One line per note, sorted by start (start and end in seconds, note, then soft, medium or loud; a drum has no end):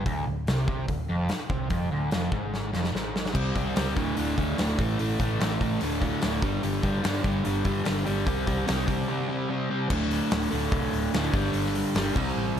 0.06 0.25 D1 medium
0.06 0.26 D2 medium
0.06 kick medium
0.06 open hi-hat soft
0.27 0.46 D1 medium
0.27 0.43 D2 medium
0.47 0.67 C2 medium
0.47 0.67 C3 loud
0.47 snare loud
0.47 open hi-hat soft
0.68 0.87 C2 medium
0.68 0.88 C3 loud
0.68 kick medium
0.88 1.08 D1 medium
0.88 1.05 D2 medium
0.88 kick medium
0.88 open hi-hat soft
1.09 1.28 F1 medium
1.09 1.29 F2 medium
1.29 snare loud
1.29 open hi-hat soft
1.50 1.69 C2 medium
1.50 1.70 C3 medium
1.50 kick medium
1.70 1.89 F1 medium
1.70 1.90 F2 loud
1.70 kick medium
1.70 open hi-hat soft
1.91 2.11 D1 medium
1.91 2.11 D2 medium
2.11 2.31 F1 medium
2.11 2.32 F2 loud
2.11 snare loud
2.11 open hi-hat soft
2.32 2.70 G#1 medium
2.32 2.72 G#2 medium
2.32 kick medium
2.54 snare medium
2.73 2.93 F1 medium
2.73 2.93 F2 medium
2.73 snare medium
2.84 snare medium
2.93 3.32 G#1 medium
2.93 3.33 G#2 medium
2.93 snare medium
3.16 snare medium
3.26 snare medium
3.34 3.51 C2 medium
3.34 3.54 C3 medium
3.34 3.54 G3 loud
3.34 3.54 C4 loud
3.34 kick medium
3.34 crash medium
3.55 3.71 C2 loud
3.55 3.74 C3 medium
3.55 3.74 G3 medium
3.55 3.75 C4 medium
3.55 kick medium
3.55 open hi-hat medium
3.75 3.92 C#2 medium
3.75 3.95 C3 medium
3.75 3.95 G3 medium
3.75 3.95 C4 medium
3.75 snare loud
3.75 open hi-hat medium
3.95 4.12 D1 medium
3.95 4.15 D2 medium
3.95 4.16 A2 loud
3.95 4.16 D3 loud
3.95 kick loud
3.95 open hi-hat soft
4.16 4.33 D1 medium
4.16 4.35 D2 medium
4.16 4.35 A2 loud
4.16 4.36 D3 loud
4.16 open hi-hat medium
4.36 4.56 D2 medium
4.36 4.53 D2 loud
4.36 4.57 A2 medium
4.36 4.57 D3 loud
4.36 kick medium
4.36 open hi-hat soft
4.58 4.74 D1 medium
4.58 4.77 D2 medium
4.58 4.77 A2 medium
4.58 4.78 D3 medium
4.58 snare loud
4.58 open hi-hat medium
4.79 4.95 A1 medium
4.79 4.98 A2 loud
4.79 4.98 E3 loud
4.79 4.99 A3 loud
4.79 kick medium
4.79 open hi-hat medium
4.99 5.15 A1 loud
4.99 5.18 A2 medium
4.99 5.19 E3 loud
4.99 5.19 A3 loud
4.99 open hi-hat medium
5.20 5.36 A1 medium
5.20 5.39 A2 medium
5.20 5.40 E3 medium
5.20 5.40 A3 loud
5.20 kick medium
5.20 open hi-hat medium
5.40 5.56 A1 medium
5.40 5.59 A2 medium
5.40 5.60 E3 medium
5.40 5.60 A3 medium
5.40 snare loud
5.40 open hi-hat medium
5.61 5.76 A1 medium
5.61 5.80 A2 medium
5.61 5.80 E3 medium
5.61 5.80 A3 medium
5.61 kick medium
5.61 open hi-hat medium
5.81 6.13 D1 medium
5.81 6.00 D2 loud
5.81 6.01 A2 loud
5.81 6.01 D3 loud
5.81 open hi-hat medium
6.01 6.21 D2 medium
6.01 6.21 A2 medium
6.01 6.22 D3 loud
6.01 kick medium
6.01 open hi-hat medium
6.22 6.38 D1 medium
6.22 6.41 D2 medium
6.22 6.42 A2 medium
6.22 6.41 D3 medium
6.22 snare loud
6.22 open hi-hat medium
6.42 6.58 G1 medium
6.42 6.61 G2 loud
6.42 6.62 D3 medium
6.42 6.63 G3 loud
6.42 kick loud
6.42 open hi-hat soft
6.63 6.79 G1 medium
6.63 6.82 G2 medium
6.63 6.82 D3 loud
6.63 6.83 G3 loud
6.63 open hi-hat medium
6.83 6.99 G1 medium
6.83 7.02 G2 medium
6.83 7.02 D3 medium
6.83 7.03 G3 medium
6.83 kick medium
6.83 open hi-hat medium
7.03 7.23 G2 medium
7.03 7.20 G2 loud
7.03 7.23 D3 medium
7.03 7.24 G3 medium
7.03 snare loud
7.03 open hi-hat medium
7.24 7.40 G1 medium
7.24 7.43 G2 medium
7.24 7.44 D3 medium
7.24 7.44 G3 medium
7.24 kick medium
7.24 open hi-hat soft
7.45 7.61 G1 loud
7.45 7.64 G2 loud
7.45 7.64 D3 loud
7.45 7.64 G3 loud
7.45 open hi-hat medium
7.65 7.81 G2 medium
7.65 7.83 G2 medium
7.65 7.84 D3 medium
7.65 7.85 G3 loud
7.65 kick medium
7.65 open hi-hat medium
7.85 8.03 G1 medium
7.85 8.04 G2 medium
7.85 8.04 D3 loud
7.85 8.04 G3 loud
7.85 snare loud
7.85 open hi-hat medium
8.05 8.23 G1 medium
8.05 8.25 G2 medium
8.05 8.25 D3 medium
8.05 8.25 G3 loud
8.05 open hi-hat medium
8.26 8.43 C2 medium
8.26 8.45 C3 medium
8.26 8.46 G3 loud
8.26 8.46 C4 loud
8.26 kick loud
8.26 open hi-hat medium
8.46 8.63 C2 loud
8.46 8.65 C3 medium
8.46 8.65 G3 loud
8.46 8.66 C4 medium
8.46 kick loud
8.46 open hi-hat medium
8.67 8.84 C2 loud
8.67 8.85 C3 medium
8.67 8.86 G3 medium
8.67 8.86 C4 medium
8.67 snare loud
8.67 open hi-hat medium
8.87 9.04 C2 medium
8.87 9.07 C3 loud
8.87 9.07 G3 medium
8.87 9.07 C4 medium
8.87 kick medium
8.87 open hi-hat medium
9.08 9.27 C3 loud
9.08 9.28 G3 loud
9.08 9.28 C4 loud
9.29 9.48 C3 medium
9.29 9.48 G3 loud
9.29 9.49 C4 loud
9.49 9.69 C3 medium
9.49 9.69 G3 loud
9.49 9.69 C4 loud
9.70 9.89 C3 medium
9.70 9.90 G3 loud
9.70 9.90 C4 medium
9.89 10.19 D1 medium
9.89 10.50 D2 medium
9.89 10.50 A2 loud
9.89 10.50 D3 loud
9.89 kick loud
9.89 crash medium
10.11 snare soft
10.11 open hi-hat medium
10.31 10.46 D1 medium
10.31 snare loud
10.31 open hi-hat medium
10.51 10.67 D1 medium
10.51 11.12 D2 medium
10.51 11.12 A2 medium
10.51 11.12 D3 medium
10.51 open hi-hat medium
10.72 10.87 C2 medium
10.72 kick loud
10.72 open hi-hat medium
10.93 11.07 D1 loud
10.93 open hi-hat medium
11.13 11.28 D1 medium
11.13 11.33 D2 medium
11.13 11.33 A2 medium
11.13 11.33 D3 loud
11.13 snare loud
11.13 open hi-hat medium
11.33 11.48 G1 loud
11.33 11.94 G2 medium
11.33 11.94 D3 loud
11.33 11.95 G3 loud
11.33 kick loud
11.33 open hi-hat medium
11.53 11.83 G1 loud
11.53 open hi-hat medium
11.66 snare soft
11.75 snare soft
11.75 open hi-hat medium
11.95 12.09 G1 loud
11.95 12.14 G2 medium
11.95 12.15 D3 medium
11.95 12.15 G3 loud
11.95 snare loud
11.95 open hi-hat medium
12.15 12.30 C2 medium
12.15 12.60 C3 loud
12.15 12.60 G3 loud
12.15 12.60 C4 loud
12.15 kick loud
12.15 crash medium
12.36 12.51 A1 loud
12.56 12.60 C2 loud